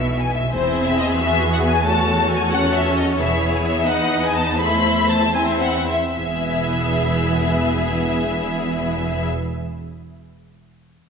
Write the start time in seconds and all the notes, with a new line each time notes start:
Already playing: B1 B2 E5
0.20 G#5
0.31 E5
0.53 E1 E2 C4 E4 G#4 C5 E5
0.88 E5
0.98 D#5
1.21 B3 F#4 E5
1.54 F#5
1.64 G#5
1.86 A3 A4 C#5 A5
2.31 G#5
2.53 C#4 A4 F#5
2.75 E5
2.97 D#5
3.18 E1 E2 B3 E4 G#4 E5
3.55 G#5
3.66 E5
3.87 D#4 B4 D#5 F#5
4.24 G#5
4.36 A5
4.59 A3 E4 C5 E5 B5
5.10 A5
5.34 C4 E4 C5 E5 G#5
5.61 F#5
5.89 E5
6.16 E1 E2 B3 E4 G#4 E5